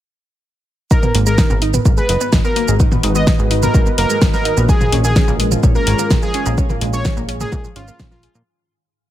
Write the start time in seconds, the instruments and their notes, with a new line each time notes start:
0.91 synth drone G#2 D#3, synth arpeggio sound D#4 D#5, ambient pad F#4, analog synth lead A#4, kick, shaker
1.03 synth arpeggio sound B3 B4, mid tom, shaker
1.14 analog synth bass G#1, synth arpeggio sound A#3 A#4, open hi-hat
1.26 synth arpeggio sound G#3 G#4, analog synth lead A#4, shaker
1.38 synth arpeggio sound D#4 D#5, ambient pad B4, kick, snare, shaker
1.50 analog synth bass G#1, synth arpeggio sound B3 B4, mid tom, shaker
1.62 synth arpeggio sound D#4 D#5, open hi-hat
1.74 synth arpeggio sound B3 B4, mid tom, shaker
1.85 analog synth bass G#1, synth arpeggio sound A#3 A#4, kick, shaker
1.97 synth arpeggio sound G#3 G#4, analog synth lead B4, shaker
2.04 ambient pad D#5
2.09 analog synth bass F#1, synth arpeggio sound D#4 D#5, open hi-hat
2.21 synth arpeggio sound B3 B4, shaker
2.33 analog synth bass G#1, synth arpeggio sound D#4 D#5, kick, snare, shaker
2.44 synth arpeggio sound B3 B4, analog synth lead A#4, shaker
2.56 synth arpeggio sound A#3 A#4, open hi-hat
2.68 analog synth bass G#1, synth arpeggio sound G#3 G#4, shaker
2.80 synth arpeggio sound D#4 D#5, kick, shaker
2.92 synth arpeggio sound B3 B4, mid tom, shaker
3.03 analog synth bass G#1, synth arpeggio sound D#4 D#5, open hi-hat
3.15 synth arpeggio sound B3 B4, analog synth lead D#5, shaker
3.27 synth arpeggio sound A#3 A#4, kick, snare, shaker
3.39 analog synth bass G#1, synth arpeggio sound G#3 G#4, shaker
3.51 synth arpeggio sound D#4 D#5, open hi-hat
3.62 synth arpeggio sound B3 B4, analog synth lead A#4, mid tom, shaker
3.74 analog synth bass G#1, synth arpeggio sound D#4 D#5, kick, shaker
3.86 synth arpeggio sound B3 B4, shaker
3.98 analog synth bass F#1, synth arpeggio sound A#3 A#4, analog synth lead A#4, open hi-hat
4.10 synth arpeggio sound G#3 G#4, shaker
4.22 analog synth bass G#1, synth arpeggio sound D#4 D#5, kick, snare, shaker
4.33 synth arpeggio sound B3 B4, analog synth lead A#4, snare, shaker
4.45 synth arpeggio sound D#4 D#5, open hi-hat
4.57 analog synth bass A#1, synth arpeggio sound B3 B4, shaker
4.69 synth arpeggio sound G#3 G#4, analog synth pad G#3 C#4 F4 A#4, analog synth lead G#4, ambient pad G#4, kick, shaker
4.81 synth arpeggio sound F3 F4, mid tom, shaker
4.92 analog synth bass A#1, synth arpeggio sound C#4 C#5, open hi-hat
5.04 synth arpeggio sound A#3 A#4, analog synth lead G#4, ambient pad C#5, shaker
5.16 synth arpeggio sound C#4 C#5, kick, snare, shaker
5.28 analog synth bass A#1, synth arpeggio sound A#3 A#4, mid tom, shaker
5.40 synth arpeggio sound G#3 G#4, open hi-hat
5.52 synth arpeggio sound F3 F4, mid tom, shaker
5.58 ambient pad F5
5.63 analog synth bass A#1, synth arpeggio sound C#4 C#5, kick, shaker
5.75 synth arpeggio sound A#3 A#4, analog synth lead A#4, shaker
5.87 analog synth bass G#1, synth arpeggio sound C#4 C#5, open hi-hat
5.99 synth arpeggio sound A#3 A#4, shaker
6.11 analog synth bass A#1, synth arpeggio sound G#3 G#4, kick, snare, shaker
6.22 synth arpeggio sound F3 F4, analog synth lead G#4, shaker
6.34 synth arpeggio sound C#4 C#5, open hi-hat
6.46 analog synth bass A#1, synth arpeggio sound A#3 A#4, shaker
6.58 synth arpeggio sound C#4 C#5, analog synth pad G#4, kick, shaker
6.70 synth arpeggio sound A#3 A#4, mid tom, shaker
6.81 analog synth bass A#1, synth arpeggio sound G#3 G#4, open hi-hat
6.93 synth arpeggio sound F3 F4, analog synth lead C#5, shaker
7.05 synth arpeggio sound C#4 C#5, kick, snare, shaker
7.17 analog synth bass A#1, synth arpeggio sound A#3 A#4, shaker
7.29 synth arpeggio sound C#4 C#5, open hi-hat
7.41 synth arpeggio sound A#3 A#4, analog synth lead G#4, mid tom, shaker
7.52 analog synth bass A#2, synth arpeggio sound G#3 G#4, kick, shaker
7.64 synth arpeggio sound F3 F4, shaker
7.76 analog synth bass G#1, synth arpeggio sound C#4 C#5, analog synth lead F4, open hi-hat
7.88 synth arpeggio sound A#3 A#4, shaker
7.99 analog synth bass A#1, synth arpeggio sound C#4 C#5, kick, snare, shaker
8.11 synth arpeggio sound A#3 A#4, analog synth lead F4, snare, shaker
8.23 synth arpeggio sound G#3 G#4, open hi-hat
8.35 analog synth bass A#2, synth arpeggio sound F3 F4, shaker